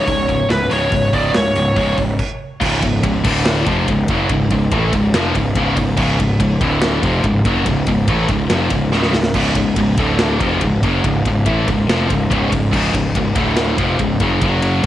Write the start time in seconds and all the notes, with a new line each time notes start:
Already playing: C#5
0.07 C#1 C#2 G#2, kick, open hi-hat
0.28 C#2 G#2, kick, open hi-hat
0.49 C#1 C#2 G#2 B4, snare, open hi-hat
0.70 C#1 C#2 G#2 C#3 C#5, snare, open hi-hat
0.92 C#1 C#2 G#2, kick, open hi-hat
1.13 C#1 C#2 G#2 C#3 D5, kick, open hi-hat
1.33 C#1 C#2 G#2 C#5, snare, open hi-hat
1.55 C#1 C#2 G#2, open hi-hat
1.76 C#1 C#2 G#2 C#3, kick, open hi-hat
1.98 C#1 C#2 G#2, kick, open hi-hat
2.19 kick, crash
2.60 C#1 C#2 G#2 C#3, kick, crash
2.82 C#1 C#2 G#2, kick, ride
3.03 C#1 C#2 G#2, kick, ride
3.24 D1 D2 A2 D3, kick, crash
3.46 snare
3.66 F1 F2 C3 F3, kick, ride
3.88 C#1 C#2 G#2, kick, ride
4.08 F#1 F#2 C#3 F#3, kick, ride
4.29 C#1 C#2 G#2, kick, ride
4.50 C#1 C#2 G#2, kick, ride
4.71 A1 A2 E3 A3, kick, ride
4.93 C#1 C#2 G#2, kick, ride
5.14 F1 F2 C3 F3, snare, ride
5.35 C#1 C#2 G#2, kick, ride
5.55 C#1 C#2 G#2 C#3, kick, ride
5.76 C#1 C#2 G#2, kick, ride
5.97 C#1 C#2 G#2 C#3, kick, crash
6.18 C#1 C#2 G#2, kick, ride
6.40 C#1 C#2 G#2, kick, ride
6.61 D1 D2 A2 D3, kick, ride
6.82 snare, ride
7.02 F1 F2 C3 F3, kick, ride
7.24 C#1 C#2 G#2, kick, ride
7.44 F#1 F#2 C#3 F#3, kick, ride
7.66 C#1 C#2 G#2, kick, ride
7.87 C#1 C#2 G#2, kick, ride
8.08 A1 A2 E3 A3, kick, ride
8.28 C#1 C#2 G#2, kick, ride
8.50 F1 F2 C3 F3, snare, ride
8.70 C#1 C#2 G#2, kick, ride
8.92 C#1 C#2 G#2 C#3, snare
9.03 snare
9.13 C#1 C#2 G#2, snare
9.23 snare
9.34 C#1 C#2 G#2 C#3, kick, crash
9.55 C#1 C#2 G#2, kick, ride
9.76 C#1 C#2 G#2, kick, ride
9.97 D1 D2 A2 D3, kick, snare, ride
10.19 snare, ride
10.40 F1 F2 C3 F3, kick, ride
10.61 C#1 C#2 G#2, kick, ride
10.82 F#1 F#2 C#3 F#3, kick, ride
11.04 C#1 C#2 G#2, kick, ride
11.25 C#1 C#2 G#2, kick, ride
11.46 A1 A2 E3 A3, kick, ride
11.67 C#1 C#2 G#2, kick, ride
11.88 F1 F2 C3 F3, snare, ride
12.09 C#1 C#2 G#2, kick, ride
12.30 C#1 C#2 G#2 C#3, kick, ride
12.51 C#1 C#2 G#2, kick, ride
12.72 C#1 C#2 G#2 C#3, kick, crash
12.94 C#1 C#2 G#2, kick, ride
13.15 C#1 C#2 G#2, kick, ride
13.35 D1 D2 A2 D3, kick, ride
13.57 snare, ride
13.78 F1 F2 C3 F3, kick, ride
13.99 C#1 C#2 G#2, kick, ride
14.20 F#1 F#2 C#3 F#3, kick, ride
14.41 F#1 F#2 C#3 F#3, kick, ride
14.62 ride